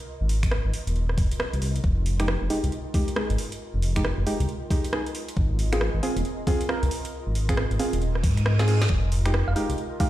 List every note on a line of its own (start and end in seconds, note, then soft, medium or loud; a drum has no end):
0.00 1.83 F4 medium
0.00 1.84 A#4 medium
0.00 1.84 D#5 medium
0.21 0.60 G#1 medium
0.29 open hi-hat medium
0.43 finger snap medium
0.43 kick medium
0.43 closed hi-hat medium
0.51 cross-stick loud
0.65 0.72 G#1 loud
0.74 open hi-hat loud
0.87 1.19 D#1 medium
0.87 closed hi-hat medium
0.96 closed hi-hat soft
1.09 cross-stick medium
1.18 1.28 F1 medium
1.18 kick loud
1.18 open hi-hat medium
1.31 closed hi-hat medium
1.40 cross-stick loud
1.53 1.60 C2 medium
1.53 closed hi-hat soft
1.62 1.80 C2 medium
1.62 open hi-hat medium
1.76 closed hi-hat medium
1.84 2.36 F1 medium
1.84 10.10 F4 medium
1.84 kick loud
2.06 10.10 A#4 medium
2.06 10.10 D#5 medium
2.06 open hi-hat medium
2.20 2.25 G#3 medium
2.20 2.25 D#4 medium
2.20 2.25 G4 medium
2.20 finger snap medium
2.20 cross-stick medium
2.20 closed hi-hat medium
2.28 cross-stick loud
2.42 2.48 F1 loud
2.50 2.59 G#3 medium
2.50 2.59 D#4 medium
2.50 2.59 G4 medium
2.50 open hi-hat loud
2.64 2.70 C2 medium
2.64 closed hi-hat medium
2.72 closed hi-hat soft
2.94 3.08 G#3 medium
2.94 3.08 D#4 medium
2.94 3.08 G4 medium
2.94 kick loud
2.94 open hi-hat loud
3.08 closed hi-hat medium
3.16 3.25 G#3 medium
3.16 3.25 D#4 medium
3.16 3.25 G#4 medium
3.16 cross-stick loud
3.30 3.36 G#1 medium
3.30 closed hi-hat medium
3.38 open hi-hat loud
3.52 closed hi-hat medium
3.74 4.13 F1 medium
3.82 open hi-hat loud
3.96 4.01 G#3 medium
3.96 4.01 D#4 medium
3.96 4.01 G4 medium
3.96 finger snap medium
3.96 kick medium
3.96 closed hi-hat medium
4.05 cross-stick loud
4.18 4.24 F1 loud
4.27 4.35 G#3 medium
4.27 4.35 D#4 medium
4.27 4.35 G4 medium
4.27 open hi-hat loud
4.40 4.47 C2 medium
4.40 closed hi-hat medium
4.49 closed hi-hat soft
4.71 4.85 G#3 medium
4.71 4.85 D#4 medium
4.71 4.85 G4 loud
4.71 kick loud
4.71 open hi-hat loud
4.84 closed hi-hat medium
4.93 5.02 G#3 medium
4.93 5.01 D#4 medium
4.93 5.01 G#4 medium
4.93 cross-stick loud
5.07 closed hi-hat medium
5.15 open hi-hat loud
5.29 closed hi-hat medium
5.37 5.89 G#1 loud
5.37 kick loud
5.59 open hi-hat loud
5.72 5.78 C4 medium
5.72 5.78 F4 medium
5.72 5.78 G#4 medium
5.72 finger snap medium
5.72 cross-stick medium
5.72 closed hi-hat medium
5.81 cross-stick loud
5.95 6.01 G#1 loud
6.03 6.12 C4 medium
6.03 6.12 F4 medium
6.03 6.12 G#4 medium
6.03 open hi-hat loud
6.17 6.23 D#1 medium
6.17 closed hi-hat medium
6.25 closed hi-hat soft
6.47 6.61 C4 medium
6.47 6.61 F4 medium
6.47 6.61 G#4 loud
6.47 kick loud
6.47 open hi-hat loud
6.61 closed hi-hat medium
6.69 6.78 C4 medium
6.69 6.78 F4 medium
6.69 6.78 A#4 medium
6.69 cross-stick loud
6.83 6.89 C2 medium
6.83 closed hi-hat medium
6.91 open hi-hat loud
7.05 closed hi-hat medium
7.27 7.66 G#1 medium
7.35 open hi-hat loud
7.49 7.54 C4 medium
7.49 7.54 F4 medium
7.49 7.54 G#4 medium
7.49 finger snap medium
7.49 kick medium
7.49 closed hi-hat medium
7.57 cross-stick loud
7.71 7.77 G#1 loud
7.71 closed hi-hat soft
7.79 7.88 C4 medium
7.79 7.88 F4 medium
7.79 7.88 G#4 medium
7.79 open hi-hat loud
7.93 8.25 D#1 medium
7.93 closed hi-hat medium
8.02 closed hi-hat soft
8.02 reverse cymbal medium
8.15 cross-stick medium
8.23 8.87 G#2 medium
8.23 kick loud
8.23 open hi-hat loud
8.37 finger snap soft
8.37 closed hi-hat medium
8.46 cross-stick loud
8.59 8.65 C4 medium
8.59 8.65 F4 medium
8.59 8.65 G#4 loud
8.59 snare medium
8.59 closed hi-hat medium
8.68 8.76 C4 medium
8.68 8.76 F4 medium
8.68 8.76 G#4 loud
8.68 open hi-hat loud
8.81 snare medium
8.81 closed hi-hat medium
8.90 9.42 F1 loud
8.90 kick loud
9.12 open hi-hat loud
9.25 9.31 G#3 medium
9.25 9.31 D#4 medium
9.25 9.31 G4 medium
9.25 finger snap medium
9.25 cross-stick medium
9.25 closed hi-hat medium
9.34 cross-stick loud
9.48 9.54 F1 loud
9.48 9.53 F5 medium
9.56 9.65 G#3 medium
9.56 9.65 D#4 medium
9.56 9.65 G4 medium
9.56 9.65 F5 medium
9.56 open hi-hat loud
9.70 9.76 C2 loud
9.70 closed hi-hat medium
9.78 closed hi-hat soft
10.00 10.10 G#3 medium
10.00 10.10 D#4 medium
10.00 10.10 G4 loud
10.00 10.09 F5 medium
10.00 kick loud
10.00 open hi-hat loud